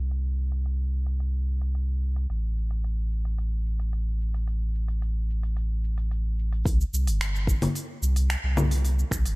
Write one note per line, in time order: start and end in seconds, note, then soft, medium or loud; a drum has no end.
0.00 2.27 C2 medium
0.11 open hi-hat soft
0.11 shaker soft
0.39 shaker medium
0.52 open hi-hat soft
0.52 shaker soft
0.66 open hi-hat soft
0.66 shaker soft
0.93 shaker medium
1.06 open hi-hat soft
1.06 shaker soft
1.20 open hi-hat soft
1.20 shaker soft
1.48 shaker medium
1.61 open hi-hat soft
1.61 shaker soft
1.75 open hi-hat soft
1.75 shaker soft
2.02 shaker medium
2.16 open hi-hat soft
2.16 shaker soft
2.29 6.63 A1 medium
2.29 open hi-hat soft
2.29 shaker soft
2.58 shaker medium
2.71 open hi-hat soft
2.71 shaker soft
2.84 open hi-hat soft
2.84 shaker soft
3.12 shaker medium
3.25 open hi-hat soft
3.25 shaker soft
3.38 open hi-hat soft
3.38 shaker soft
3.66 shaker medium
3.80 open hi-hat soft
3.80 shaker soft
3.93 open hi-hat soft
3.93 shaker soft
4.21 shaker medium
4.34 open hi-hat soft
4.34 shaker soft
4.48 open hi-hat soft
4.48 shaker soft
4.75 shaker medium
4.88 open hi-hat soft
4.88 shaker soft
5.02 open hi-hat soft
5.02 shaker soft
5.30 shaker medium
5.43 open hi-hat soft
5.43 shaker soft
5.57 open hi-hat soft
5.57 shaker soft
5.84 shaker medium
5.98 open hi-hat soft
5.98 shaker soft
6.11 open hi-hat soft
6.11 shaker soft
6.39 shaker medium
6.53 open hi-hat soft
6.53 shaker soft
6.65 6.84 C2 loud
6.65 kick loud
6.65 open hi-hat soft
6.65 shaker soft
6.81 shaker soft
6.93 7.08 C2 medium
6.93 shaker medium
7.07 7.68 G1 medium
7.07 open hi-hat medium
7.07 shaker soft
7.21 finger snap loud
7.21 open hi-hat soft
7.21 shaker soft
7.36 shaker soft
7.47 kick loud
7.47 shaker medium
7.62 open hi-hat medium
7.62 low conga medium
7.62 shaker soft
7.75 open hi-hat soft
7.75 shaker soft
8.02 8.36 C2 loud
8.02 shaker medium
8.16 open hi-hat medium
8.16 shaker soft
8.30 finger snap loud
8.30 open hi-hat soft
8.30 shaker soft
8.43 9.04 C2 medium
8.57 low conga medium
8.57 shaker medium
8.71 open hi-hat medium
8.71 shaker soft
8.85 open hi-hat soft
8.85 shaker soft
8.99 shaker soft
9.11 9.27 C2 medium
9.11 finger snap soft
9.11 kick medium
9.11 shaker medium
9.25 9.36 G1 medium
9.25 open hi-hat medium
9.25 shaker soft